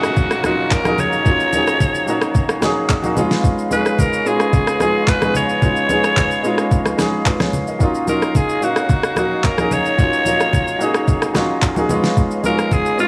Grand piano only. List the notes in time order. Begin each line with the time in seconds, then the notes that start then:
Already playing: F#3 A#3 C#4 D#4 E4 F4 G#4
0.43 F#3 A#3 C#4 D#4 F4
0.84 F#3 A#3 C#4 D#4 G#4
1.24 F#3 A#3 C#4 D#4 F4
1.52 F3 A#3 C#4 D#4 G#4
1.58 F#3
2.06 F#3 A#3 C#4 D#4 F#4
2.61 F#3 A#3 C#4 D#4 G#4
3.02 F#3 A#3 C#4 D#4 F#4
3.15 G#3 B3 C#4 D#4 F4
3.70 G#3 B3 C#4 D#4 G#4
4.24 G#3 B3 C#4 D#4 F4
4.79 G#3 B3 C#4 D#4 F4
5.20 G#3 B3 C#4 D#4 G#4
5.61 G#3 B3 C#4 D#4 F4
5.88 G#3 B3 C#4 D#4 G#4
6.43 G#3 B3 C#4 D#4 F4
6.97 G#3 B3 C#4 D#4 G#4
7.26 F4 B4
7.41 G#4 C#5
7.68 A#4 D#5
7.79 F#3 A#3 C#4 D#4 F4
8.06 F#3 A#3 C#4 D#4 F4
8.61 F#3 A#3 C#4 D#4 F5
9.15 F#3 A#3 C#4 D#4 F#4
9.57 F#3 A#3 C#4 D#4 G#4
9.97 F#3 A#3 C#4 D#4 F4
10.24 F#3 A#3 C#4 D#4 F4
10.79 F#3 A#3 C#4 D#4 G#4
11.34 F#3 A#3 C#4 D#4 F4
11.75 F#3 A#3 C#4 D#4 G#4
11.88 G#3 B3 C#4 D#4 F4
12.43 G#3 B3 C#4 D#4 F4
12.97 G#3 B3 C#4 D#4 F4